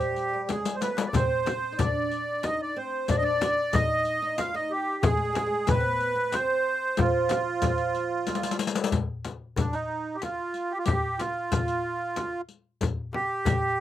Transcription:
Already playing: oud G3, accordion G4
0.00 riq
0.16 riq, darbuka ka
0.33 oud G3
0.49 oud G#3, accordion G#4, riq, darbuka tek, frame drum
0.65 riq, darbuka ka
0.75 accordion C5
0.81 oud B3, accordion B4, riq, darbuka tek
0.97 riq, darbuka ka
1.07 accordion D5
1.13 oud C4, accordion C5, riq, darbuka dum, frame drum
1.46 riq, darbuka tek, frame drum
1.72 oud D#4
1.78 oud D4, accordion D5, riq, darbuka dum, frame drum
1.95 darbuka ka
2.11 riq, darbuka ka
2.43 oud D#4, accordion D#5, riq, darbuka tek, frame drum
2.61 accordion D5, darbuka ka
2.76 oud C4, accordion C5
3.08 oud D4, accordion D5, riq, darbuka dum, frame drum
3.17 accordion D#5
3.23 oud D4, accordion D5
3.41 riq, darbuka tek, frame drum
3.73 oud D#4, accordion D#5, riq, darbuka dum, frame drum
3.90 darbuka ka
4.05 riq
4.22 oud D#4
4.38 oud F4, accordion F5, riq, darbuka tek, frame drum
4.54 oud D#4, accordion D#5, darbuka ka
4.70 accordion G4
5.03 oud G#3, accordion G#4, riq, darbuka dum, frame drum
5.10 oud G#3
5.17 oud G#3
5.25 oud G#3
5.33 oud G#3, riq, darbuka tek, frame drum
5.40 oud G#3
5.46 oud G#3
5.54 oud G#3
5.67 oud B3, accordion B4, riq, darbuka dum, frame drum
5.74 oud C4
5.80 oud B3
5.85 darbuka ka
6.00 riq, darbuka ka
6.15 oud B3
6.32 oud C4, accordion C5, riq, darbuka tek, frame drum
6.50 darbuka ka
6.97 oud F3, accordion F4, riq, darbuka dum, frame drum
7.29 riq, darbuka tek, frame drum
7.62 riq, darbuka dum, frame drum
7.78 riq, darbuka ka
7.95 riq, darbuka ka
8.27 riq, darbuka tek, frame drum
8.35 riq
8.43 riq, darbuka ka
8.51 riq
8.59 riq, darbuka tek
8.67 riq
8.75 riq, darbuka ka
8.84 riq
8.92 riq, darbuka dum, frame drum
9.25 riq, darbuka tek, frame drum
9.56 accordion D4, riq, darbuka dum, frame drum
9.73 accordion D#4, riq
9.89 darbuka ka
10.15 accordion G4
10.22 accordion F4, riq, darbuka tek, frame drum
10.39 darbuka ka
10.54 riq
10.71 accordion G4
10.78 accordion F4
10.84 accordion G4, riq, darbuka dum, frame drum
11.19 accordion F4, riq, darbuka tek, frame drum
11.52 riq, darbuka dum, frame drum
11.68 riq
11.84 darbuka ka
12.16 riq, darbuka tek, frame drum
12.32 darbuka ka
12.48 riq, darbuka ka
12.81 riq, darbuka dum, frame drum
13.13 accordion G4, darbuka tek, frame drum
13.45 riq, darbuka dum, frame drum

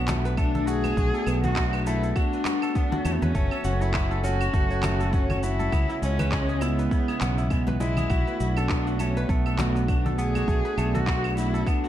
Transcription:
Already playing: fretless electric bass B1, analog synth pad A3 B3 D4, cello B3, kora B3 F#4 A4 B4
0.08 kora A3, clap, high bongo, high conga, low conga, shaker
0.25 kora B4, shaker
0.37 kora A3, cello D4, kick, claves, shaker
0.55 kora A4, low conga, shaker
0.67 kora F#4, cello G#4, shaker
0.84 kora B4, high conga, claves, shaker
0.97 fretless electric bass B1, kora F#4, kick, shaker
1.14 kora A4, shaker
1.27 fretless electric bass B1, kora B3, claves, shaker
1.44 kora F#4, cello F#4, low conga, shaker
1.56 kora A3, kick, clap, high bongo, shaker
1.73 kora B4, claves, shaker
1.86 kora A3, cello E4, high bongo, shaker
2.03 kora A4, shaker
2.16 cello D4, kora F#4, kick, claves, shaker
2.33 kora B4, shaker
2.45 kora F#4, clap, high conga, shaker
2.62 kora A4, claves, shaker
2.75 kora B3, cello D4, kick, shaker
2.92 kora F#4, high bongo, high conga, low conga, shaker
3.05 fretless electric bass E2, kora A3, cello C#4, high bongo, claves, shaker
3.13 cello B3
3.21 fretless electric bass E2, cello C#4, kora B4, low conga, shaker
3.35 fretless electric bass F#1, analog synth pad F#3 C#4 A4 G#5, kora A3, kick, shaker
3.51 kora A4, claves, shaker
3.64 fretless electric bass F#1, kora F#4, shaker
3.81 cello E4, kora C#5, shaker
3.94 kora F#4, kick, clap, claves, shaker
4.11 kora A4, shaker
4.24 kora C#4, cello F#4, high bongo, high conga, shaker
4.41 kora F#4, claves, shaker
4.53 fretless electric bass F#1, kora A3, kick, shaker
4.70 kora C#5, shaker
4.83 kora A3, clap, high bongo, high conga, low conga, claves, shaker
5.00 kora A4, shaker
5.13 cello C#4, kora F#4, kick, shaker
5.30 kora C#5, low conga, claves, shaker
5.43 cello E4, kora F#4, shaker
5.59 kora A4, high conga, shaker
5.72 fretless electric bass C#2, analog synth pad C#3 G#3 E4, kora B3, kick, claves, shaker
5.89 kora E4, shaker
6.02 fretless electric bass C#2, kora G#3, cello C#4, shaker
6.19 kora B4, low conga, claves, shaker
6.32 kora G#3, kick, clap, high bongo, shaker
6.49 kora G#4, shaker
6.61 cello B3, kora E4, high bongo, high conga, claves, shaker
6.79 kora B4, shaker
6.91 kora E4, kick, shaker
7.08 kora G#4, claves, shaker
7.21 fretless electric bass B1, kora B3, clap, high conga, shaker
7.38 kora E4, shaker
7.50 kora G#3, cello B3, kick, claves, shaker
7.67 kora B4, high bongo, high conga, low conga, shaker
7.80 kora G#3, cello E4, high bongo, shaker
7.97 kora G#4, low conga, claves, shaker
8.10 fretless electric bass B1, analog synth pad A3 B3 D4, kora F#4, kick, claves, shaker
8.27 kora B4, shaker
8.40 fretless electric bass B1, kora F#4, shaker
8.57 cello D4, kora A4, claves, shaker
8.69 kora B3, kick, clap, shaker
8.87 kora F#4, shaker
8.99 kora A3, cello C#4, high bongo, high conga, claves, shaker
9.17 kora B4, shaker
9.29 fretless electric bass B1, kora A3, cello B3, kick, shaker
9.46 kora A4, claves, shaker
9.59 kora F#4, clap, high bongo, high conga, low conga, shaker
9.76 kora B4, shaker
9.88 cello D4, kora F#4, kick, claves, shaker
10.06 kora A4, low conga, shaker
10.18 kora B3, cello G#4, shaker
10.35 kora F#4, high conga, claves, shaker
10.48 fretless electric bass B1, kora A3, kick, shaker
10.65 kora B4, shaker
10.77 fretless electric bass B1, kora A3, claves, shaker
10.94 cello F#4, kora A4, low conga, shaker
11.07 kora F#4, kick, clap, high bongo, shaker
11.24 kora B4, claves, shaker
11.37 cello E4, kora F#4, high bongo, shaker
11.54 kora A4, shaker
11.66 kora B3, cello D4, kick, claves, shaker
11.84 kora F#4, shaker

